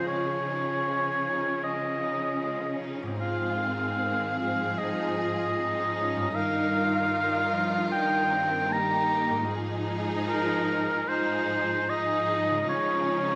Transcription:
Already playing: C#3 F3 C#4 G#4
0.00 F4 D#5
0.06 C#3 G#3 C#4 C#5
0.27 C#4
0.47 D#4
0.67 C#4
0.86 G#3
1.06 C#4
1.26 D#4
1.45 C#4
1.63 G#3 D#5
1.83 C#4
2.04 D#4
2.23 C#4
2.42 G#3
2.61 C#4
2.80 D#4
3.00 G#2 C#4
3.07 C4
3.11 D#4
3.16 F4 G#4 D#5 F5
3.20 G#2 F3 C4
3.62 D#3
3.98 D#3 C4
4.39 F3 F5
4.78 D#4 D#5
5.20 F4
5.56 F3 C4 D#4
5.99 C#4
6.16 G2
6.21 A#3
6.25 D#4
6.30 G2 A#4 D#5
6.34 D#3 D#4 F5
6.38 D#4
6.74 F4
7.12 D#3 A#4
7.54 F3
7.90 D#3 D#4 A#4 G5
8.32 C4
8.70 D#3 A#3 D#4 G4 A#5
9.30 G#2
9.35 G#3
9.40 F4
9.44 D#5
9.49 G#2 F3 D#4 G#4
10.29 A#4
11.08 F3 D#4 G#4 C5
11.89 F3 D#4 G#4 D#5
12.50 C#3
12.54 G#3
12.59 F4
12.63 C#3 D#4 G#4 D#5
12.69 F3 C#4 C#5

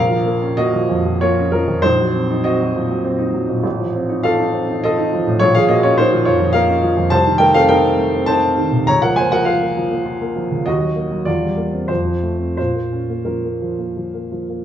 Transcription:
Already playing: A#1 A#4 F5
0.10 F3
0.25 A#3
0.42 C#4
0.57 A#3 F#4 D#5
0.73 F3
0.90 F2
1.06 F3
1.21 A#3 F4 C#5
1.38 C#4
1.52 F3 C#4 A#4
1.68 F2
1.82 A#1 D#4 C5
1.99 F#3
2.14 C4
2.31 D#4
2.44 C4 F#4 D#5
2.61 F#3
2.75 A#2
2.90 F#3
3.05 C4
3.19 D#4
3.33 F#3
3.49 A#2
3.63 A1
3.79 F3
3.95 C4
4.09 D#4
4.23 F4 A4 F5
4.39 D#4
4.53 C4
4.70 D#4
4.84 F4 A4 D#5
4.98 D#4
5.13 F3
5.27 A2
5.39 A#1 F4 C#5
5.55 F3 G#4 F5
5.69 A#3 F#4 D#5
5.83 C#4 F4 C#5
5.98 A#3 D#4 C5
6.12 F3
6.25 F2 F4 C#5
6.40 F3
6.53 A#3 A#4 F5
6.68 C#4
6.82 F3
6.97 F2
7.10 C2 C5 A5
7.26 D#3
7.38 A3 A#4 G5
7.54 C4 A4 F5
7.69 D#4 A#4 G5
7.84 C4
7.98 A3
8.15 C4
8.26 D#4 C5 A5
8.44 C4
8.58 D#3
8.73 C3
8.87 C#2 C#5 A#5
9.02 F3 A#4 F#5
9.16 A#3 C5 G#5
9.32 F3 A#4 F#5
9.45 F4 A#4 F5
9.61 A#3
9.77 F3
9.91 A#3
10.06 F4
10.21 A#3
10.36 F3
10.51 C#3
10.66 D#2 F#4 D#5
10.80 F#3
10.95 A#3
11.11 F#3
11.25 E2 F4 D5
11.42 G3
11.57 A#3
11.72 C4
11.88 F2 F4 C5
12.05 F3
12.23 A3
12.38 C4
12.57 A#2 F4 C5
12.75 A#3
12.92 C#4
13.09 A#3
13.25 F3 C#4 A#4
13.44 A#3
13.62 F3
13.78 A#3
13.97 F3
14.14 A#3
14.32 F3
14.49 A#3

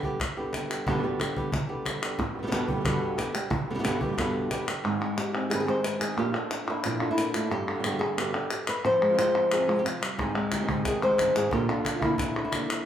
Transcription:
Already playing: D3 G3 B3 G4
0.03 D3 G3 B3 G4, cajon bass
0.20 muted nylon-string guitar stroke, cajon bass, cajon slap, clap
0.37 D3 G3 B3 G4
0.53 D3 G3 B3 G4, cajon slap, clap
0.70 D3 G3 B3 G4, clap
0.86 G2 B2 D3 G3 B3 G4, cajon bass, clap
0.91 B2 B3 G4
0.95 B2 D3 G3 B3 G4
0.99 D3 G3 B3 G4
1.03 G2 B2 D3 G3 B3 G4
1.20 D3 G3 B3 G4, cajon slap, clap
1.36 D3 G3 B3 G4, cajon bass
1.52 muted nylon-string guitar stroke, cajon bass, clap
1.69 D3 G3 B3 G4
1.85 D3 G3 B3 G4, cajon slap, clap
2.02 D3 G3 B3 G4, clap
2.19 muted nylon-string guitar stroke, cajon bass, cajon slap, clap
2.35 B2 D3 G3 B3 G4
2.39 B2 D3 G4
2.43 B2 G3 B3 G4
2.48 G2 D3 G3 B3 G4, cajon slap
2.52 B2 D3 G3 B3 G4, clap
2.67 B2 B3 G4, cajon bass
2.72 B2 D3 G3 B3 G4
2.76 D3 G3 B3 G4
2.80 B2 D3 G3 B3 G4
2.85 G2 B2 D3 G3 B3 G4, cajon bass, clap
3.17 D3 G3 B3 G4, muted nylon-string guitar stroke, cajon slap, clap
3.34 D3 G3 B3 G4, muted nylon-string guitar stroke, clap
3.51 muted nylon-string guitar stroke, cajon bass, clap
3.68 B2 D3 G3 B3 G4, cajon slap
3.75 B2 D3 G3 B3 G4
3.79 B2 D3 G3 B3 G4
3.84 G2 B2 D3 G3 B3 G4, cajon slap, clap
4.01 B2 D3 G3 B3 G4, cajon bass
4.08 B2 D3 G3 B3 G4
4.12 B2 D3 G3 B3 G4
4.17 G2 B2 D3 G3 B3 G4, cajon bass, cajon slap, clap
4.50 D3 G3 B3 G4, muted nylon-string guitar stroke, cajon slap, clap
4.67 D3 G3 B3 G4, muted nylon-string guitar stroke, clap
4.84 G#2 D#3 G#3 C4 D#4 G#4, clap
5.00 G#3 C4 D#4 G#4, clap
5.17 G4, muted nylon-string guitar stroke, clap
5.33 G#3 C4 D#4 G#4, clap
5.50 G#2 D#3 G#3 C4 D#4 G#4, clap
5.55 B4
5.60 G#4
5.66 G#3 C4 D#4 G#4 C5, clap
5.84 B4, muted nylon-string guitar stroke, clap
5.99 G#3 C4 D#4 G#4, clap
6.16 A#2 F3 A#3 D4 F4 G4, clap
6.33 D3 A#3 D4 F4, clap
6.50 D4, muted nylon-string guitar stroke, clap
6.67 A#3 D4 E4 F4
6.84 A#2 F3 A#3 D4 F4, clap
7.00 D3 A#3 D4 F4, clap
7.11 E4
7.17 A#2 F4, muted nylon-string guitar stroke, clap
7.33 A2 A#3 D4 F4, clap
7.51 G2 G4, muted nylon-string guitar stroke, clap
7.68 D3, clap
7.75 B2 D3 G3 B3 G4
7.79 B2 D3 G3 B3 G4
7.84 G2 B2 D3 G3 B3 G4 G#4, clap
7.92 G4
7.99 D3 G3 B3 G4 G#4, clap
8.17 G2 B2 D3 G3 B3 G4, clap
8.34 D3 G3 B3 G4, clap
8.51 muted nylon-string guitar stroke, clap
8.67 B4, clap
8.85 F3 C5, muted nylon-string guitar stroke, clap
9.02 G#3
9.09 C3 F3 G#3 C4 F4
9.13 C3 F3 G#3 C4 F4
9.18 F2 C3 F3 G#3 C4 F4 C5, clap
9.35 F3 G#3 C4 F4, clap
9.51 F2 C3 F3 G#3 C4 F4 G#4, clap
9.67 F3 G#3 C4 F4, clap
9.79 G4
9.85 F3 F4, muted nylon-string guitar stroke, clap
10.01 G3, clap
10.18 G#2 D#3 G#3 C4 D#4 G#4, cajon bass, cajon slap, clap
10.36 G#3 C4 D#4
10.52 D#3 G#3 C4 D#4 G4 G#4, cajon slap, clap
10.56 D#3 D#4 G#4
10.60 D#3 G#3 C4 D#4 G#4
10.64 G#3 C4 D#4 G#4
10.68 G#2 D#3 G#3 C4 D#4 G#4, cajon bass, clap
10.85 D#3 G#4, muted nylon-string guitar stroke, cajon bass, cajon slap, clap
11.02 G#3 C5, clap
11.18 G2 G#3 C4 D#4 G#4, cajon slap, clap
11.35 G#2 G#4, clap
11.51 A#2 D3 F3 A#3 D4 F4 G4, cajon bass, cajon slap
11.68 D3 A#3 D4 F4
11.85 A#3 D4 F4, cajon slap, clap
11.94 F3 A#3 D4 F4
11.98 F3 A#3 D4 E4 F4, cajon bass
12.02 A#2 F3 A#3 D4 F4, clap
12.18 A#2 D4, muted nylon-string guitar stroke, cajon bass, cajon slap, clap
12.36 D3, clap
12.45 E4
12.52 F3 A#3 D4 F4, cajon slap, clap
12.70 D4, clap

